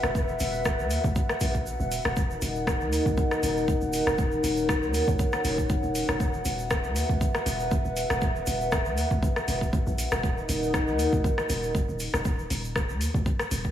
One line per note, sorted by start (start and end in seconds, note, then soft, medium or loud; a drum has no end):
0.00 0.36 D#1 loud
0.00 2.13 B4 medium
0.00 2.13 E5 medium
0.00 10.20 F#5 medium
0.00 cross-stick medium
0.00 shaker soft
0.15 kick loud
0.15 shaker soft
0.28 shaker soft
0.40 0.80 D#1 loud
0.40 open hi-hat medium
0.40 shaker medium
0.53 shaker soft
0.65 kick loud
0.65 cross-stick medium
0.65 shaker medium
0.79 0.98 D#2 loud
0.79 shaker soft
0.90 open hi-hat medium
0.90 shaker medium
1.04 1.13 C#2 loud
1.04 kick medium
1.04 shaker soft
1.16 kick loud
1.16 shaker medium
1.29 cross-stick medium
1.29 shaker soft
1.40 1.75 A#1 loud
1.40 open hi-hat medium
1.40 shaker medium
1.54 kick medium
1.54 shaker soft
1.66 shaker medium
1.80 1.99 D#1 medium
1.80 shaker soft
1.92 open hi-hat medium
1.92 shaker medium
2.05 2.38 D#1 medium
2.05 cross-stick medium
2.05 shaker soft
2.16 6.16 D#4 medium
2.16 6.16 A#4 medium
2.16 4.16 D#5 medium
2.16 kick loud
2.16 shaker medium
2.31 shaker soft
2.42 2.82 D#1 loud
2.42 open hi-hat medium
2.42 shaker medium
2.55 shaker soft
2.67 kick loud
2.67 cross-stick medium
2.67 shaker soft
2.81 3.00 D#2 loud
2.81 shaker soft
2.93 open hi-hat medium
2.93 shaker loud
3.06 3.15 C#2 loud
3.06 kick medium
3.06 shaker soft
3.17 kick loud
3.17 shaker soft
3.31 cross-stick medium
3.31 shaker soft
3.43 3.77 D#1 loud
3.43 open hi-hat medium
3.43 shaker medium
3.57 shaker soft
3.68 kick loud
3.68 shaker soft
3.81 4.01 D#1 medium
3.81 shaker soft
3.93 open hi-hat medium
3.93 shaker loud
4.07 4.39 D#1 loud
4.07 cross-stick medium
4.07 shaker soft
4.18 6.18 C#5 medium
4.18 kick loud
4.18 shaker medium
4.32 shaker soft
4.43 4.84 D#1 loud
4.43 open hi-hat loud
4.43 shaker medium
4.57 shaker soft
4.69 kick loud
4.69 cross-stick loud
4.69 shaker medium
4.82 5.02 D#2 loud
4.82 shaker soft
4.94 open hi-hat medium
4.94 shaker medium
5.08 5.17 C#2 loud
5.08 kick medium
5.08 shaker soft
5.19 kick loud
5.19 shaker medium
5.33 cross-stick medium
5.33 shaker soft
5.44 5.78 D#1 loud
5.44 open hi-hat loud
5.44 shaker loud
5.58 kick medium
5.58 shaker soft
5.69 kick loud
5.69 shaker medium
5.83 6.02 D#1 medium
5.83 shaker soft
5.95 open hi-hat medium
5.95 shaker loud
6.08 6.41 D#1 loud
6.08 cross-stick medium
6.08 shaker soft
6.20 10.19 B4 medium
6.20 10.19 E5 medium
6.20 kick loud
6.20 shaker medium
6.33 shaker soft
6.45 6.86 D#1 loud
6.45 open hi-hat medium
6.45 shaker loud
6.59 shaker soft
6.70 kick loud
6.70 cross-stick loud
6.70 shaker medium
6.84 7.03 D#2 loud
6.84 shaker soft
6.96 open hi-hat medium
6.96 shaker loud
7.09 7.18 C#2 loud
7.09 kick medium
7.09 shaker soft
7.21 kick loud
7.21 shaker medium
7.35 cross-stick medium
7.35 shaker soft
7.46 7.80 D#1 loud
7.46 open hi-hat medium
7.46 shaker loud
7.60 shaker soft
7.71 kick loud
7.71 shaker medium
7.85 8.04 D#1 medium
7.85 shaker soft
7.97 open hi-hat medium
7.97 shaker loud
8.10 8.43 D#1 loud
8.10 cross-stick medium
8.10 shaker soft
8.21 kick loud
8.21 shaker medium
8.36 shaker soft
8.47 8.87 D#1 loud
8.47 open hi-hat medium
8.47 shaker loud
8.61 shaker soft
8.72 kick loud
8.72 cross-stick loud
8.72 shaker medium
8.85 9.05 D#2 loud
8.85 shaker soft
8.97 open hi-hat medium
8.97 shaker medium
9.11 9.20 C#2 loud
9.11 kick medium
9.11 shaker soft
9.23 kick loud
9.23 shaker medium
9.36 cross-stick medium
9.36 shaker soft
9.48 9.82 D#1 medium
9.48 open hi-hat medium
9.48 shaker medium
9.61 kick medium
9.61 shaker soft
9.73 kick loud
9.73 shaker medium
9.87 10.06 A#1 medium
9.87 shaker soft
9.98 open hi-hat medium
9.98 shaker medium
10.11 10.45 D#1 medium
10.11 cross-stick loud
10.11 shaker soft
10.23 12.23 D#4 medium
10.23 12.23 A#4 medium
10.23 12.23 D#5 medium
10.23 12.23 F#5 medium
10.23 kick loud
10.23 shaker medium
10.37 shaker soft
10.49 10.89 D#1 loud
10.49 open hi-hat medium
10.49 shaker medium
10.63 shaker soft
10.74 kick loud
10.74 cross-stick loud
10.74 shaker medium
10.88 11.07 D#2 loud
10.88 shaker soft
10.99 open hi-hat medium
10.99 shaker medium
11.13 11.22 C#2 loud
11.13 kick medium
11.13 shaker soft
11.24 kick loud
11.24 shaker soft
11.38 cross-stick medium
11.38 shaker soft
11.49 11.84 D#1 loud
11.49 open hi-hat medium
11.49 shaker medium
11.63 shaker soft
11.75 kick loud
11.75 shaker medium
11.89 12.08 D#1 medium
11.89 shaker soft
11.99 open hi-hat medium
11.99 shaker loud
12.14 12.46 D#1 loud
12.14 cross-stick medium
12.14 shaker soft
12.25 kick loud
12.25 shaker soft
12.39 shaker soft
12.50 12.90 D#1 loud
12.50 open hi-hat medium
12.50 shaker loud
12.64 shaker soft
12.76 kick loud
12.76 cross-stick medium
12.76 shaker medium
12.89 13.08 D#2 loud
12.89 shaker soft
13.01 open hi-hat medium
13.01 shaker medium
13.14 13.23 C#2 loud
13.14 kick medium
13.14 shaker soft
13.26 kick loud
13.26 shaker soft
13.39 cross-stick medium
13.39 shaker soft
13.51 13.71 D#1 medium
13.51 open hi-hat medium
13.51 shaker medium
13.64 kick medium
13.64 shaker soft